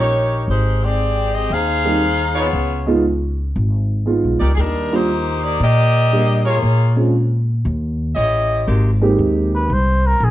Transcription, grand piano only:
1.84 G3 A#3 C4 D#4
2.87 G#3 B3 D#4 F4
4.06 G#3 B3 D#4 F4
4.92 G3 A#3 D4 F4
6.12 G3 A#3 D4 G4
6.96 G#3 C4 C#4 F4
9.01 G#3 A#3 C4 D#4 G4

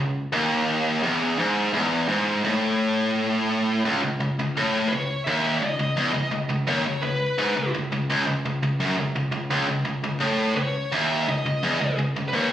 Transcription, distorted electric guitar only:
Already playing: C#2
0.33 D#2
1.03 E2
1.39 G#2
1.73 E2
2.08 G#2
2.44 A2
3.85 C#2
4.03 C#2
4.20 C#2
4.39 C#2
4.57 A2
4.93 C#2
5.27 D#2
5.62 C#2
5.79 C#2
5.97 E2
6.14 C#2
6.32 C#2
6.50 C#2
6.68 D#2
6.86 C#2
7.03 C#2
7.38 G#2
7.57 C#2
7.74 C#2
7.92 C#2
8.10 C#2
8.27 C#2
8.45 C#2
8.63 C#2
8.80 F#2
8.97 C#2
9.16 C#2
9.32 C#2
9.51 C#2
9.69 C#2
9.85 C#2
10.03 C#2
10.20 A2
10.56 C#2
10.92 D#2
11.28 C#2
11.46 C#2
11.63 E2
11.81 C#2
11.98 C#2
12.16 C#2
12.33 D#2

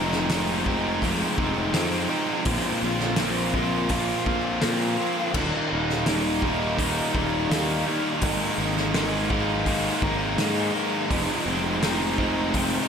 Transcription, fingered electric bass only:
Already playing: F1
1.38 F1
1.73 F2
2.46 A#1
2.83 A#1
4.26 A#1
4.64 A#2
5.34 D#1
5.73 D#1
7.14 D#1
7.51 D#2
8.22 G#1
8.58 G#1
10.02 G#1
10.37 G#2
11.11 F1
11.46 F1

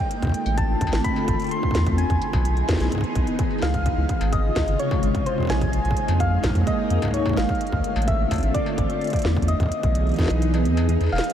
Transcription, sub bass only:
0.22 D2
0.46 A1
0.81 D2
0.93 A1
1.28 A1
1.75 E2
2.10 E2
2.33 B1
2.69 E2
2.80 B1
3.15 B1
3.62 C#2
3.98 C#2
4.21 G#1
4.56 C#2
4.68 G#1
5.03 G#1
5.50 A#1
5.85 A#1
6.08 F2
6.43 A#1
6.55 F2
6.90 F2
7.37 G#1
7.72 D2
7.96 A1
8.31 D2
8.43 A1
8.78 A1
9.25 E2
9.60 E2
9.83 B1
10.19 E2
10.30 B1
10.65 E2
10.89 E2
11.01 E2
11.12 E1

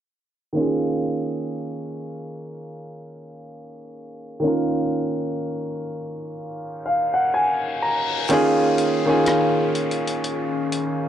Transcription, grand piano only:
0.53 D#3 A#3 C#4
0.58 F4 G#4
4.40 D#3 A#3 C#4
4.46 F4 A#4
6.86 F5
7.14 F#5
7.34 G#5
7.82 A#5
8.29 D#3 A#3 C#4 F4 G#4
9.06 D#3 A#3 C#4 F4 G#4

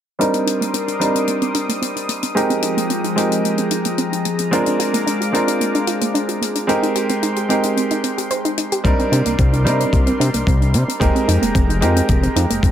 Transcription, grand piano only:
0.19 G3 C4 D4 D#4 A#4
1.00 G3 C4 D4 D#4 A#4
2.35 G#3 C4 D#4 G4 A#4
3.16 G#3 C4 D#4 G4 A#4
4.51 G#3 C4 D4 F4 A#4
5.32 G#3 C4 D4 F4 A#4
6.67 G#3 C4 D#4 G4 A#4
7.49 G#3 C4 D#4 G4 A#4
8.84 G3 C4 D4 D#4 A#4
9.65 G3 C4 D4 D#4 A#4
11.00 G#3 C4 D#4 G4 A#4
11.81 G#3 C4 D#4 G4 A#4

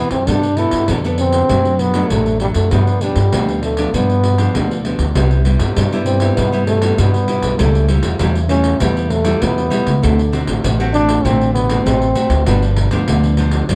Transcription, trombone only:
Already playing: B3
0.12 C4
0.29 D4
0.58 E4
1.19 C4
1.80 B3
2.11 A3
2.41 G3
2.54 A3
2.71 B3
3.02 G3
3.63 A3
3.94 B3
6.05 C4
6.37 B3
6.67 A3
6.99 B3
7.60 A3
8.50 C#4
8.82 B3
9.11 A3
9.43 B3
10.04 A3
10.93 D4
11.24 C4
11.54 B3
11.86 C4
12.48 B3

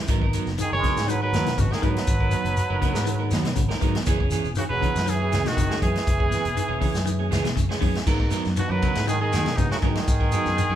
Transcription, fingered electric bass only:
0.08 G#1
0.46 F#1
0.72 F#1
0.97 G#2
1.32 D#2
1.47 muted fingered electric bass stroke
1.57 G#1
1.83 G#2
2.08 G#1
2.45 F#1
2.70 F#1
2.94 G#2
3.31 D#2
3.45 muted fingered electric bass stroke
3.57 G#1
3.82 G#2
4.07 F#1
4.44 E1
4.70 E1
4.95 F#2
5.33 C#2
5.46 muted fingered electric bass stroke
5.57 F#1
5.82 F#2
6.07 F#1
6.45 E1
6.69 E1
6.94 F#2
7.32 C#2
7.44 muted fingered electric bass stroke
7.56 F#1
7.82 F#2
8.07 G#2
8.46 F#2
8.70 F#2
8.97 G#2
9.33 D#2
9.46 muted fingered electric bass stroke
9.58 G#2
9.83 G#2
10.08 G#2
10.46 F#2
10.69 F#2

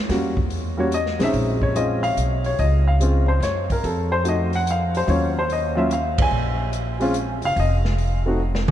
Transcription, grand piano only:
0.09 G3 A#3 C#4 F#4
0.77 G3 A#3 C#4 F#4 C#5
0.94 D#5
1.19 G#3 C4 C#4 D#4 E5
1.63 C#5
1.75 G#3 C4 C#4 F4 D#5
2.03 F5
2.46 C#5
2.59 D#5
2.88 F5
3.00 G#3 C4 C#4 F4
3.28 C5
3.43 C#5
3.72 A#4
3.85 A4
4.12 C5
4.23 A3 C4 D#4 F#4
4.28 D#5
4.55 F#5
4.71 F5
4.97 C5
5.06 F#3 A#3 C#4 F4 C#5
5.39 C5
5.52 D#5
5.75 F#3 A#3 C#4 F4 E5
5.93 F5
6.22 G#5
7.00 G#3 C4 C#4 F4
7.45 F5
7.60 D#5
8.26 A3 C4 D#4 F#4

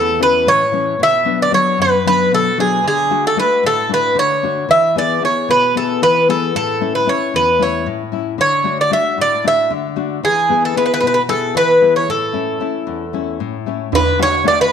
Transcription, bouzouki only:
Already playing: A4
0.23 B4
0.48 C#5
1.03 E5
1.42 D5
1.54 C#5
1.82 B4
2.07 B4
2.34 A4
2.60 G#4
2.88 G#4
3.27 A4
3.39 B4
3.66 A4
3.94 B4
4.19 C#5
4.71 E5
4.98 D5
5.25 C#5
5.51 B4
5.77 A4
6.03 B4
6.30 A4
6.56 A4
6.95 B4
7.09 C#5
7.36 B4
7.62 C#5
8.41 C#5
8.81 D5
8.93 E5
9.21 D5
9.48 E5
10.25 G#4
10.65 A4
10.77 B4
10.86 B4
10.94 B4
11.01 B4
11.07 B4
11.14 B4
11.29 A4
11.57 B4
11.96 C#5
12.10 A4
13.95 B4
14.22 C#5
14.48 D5
14.61 B4

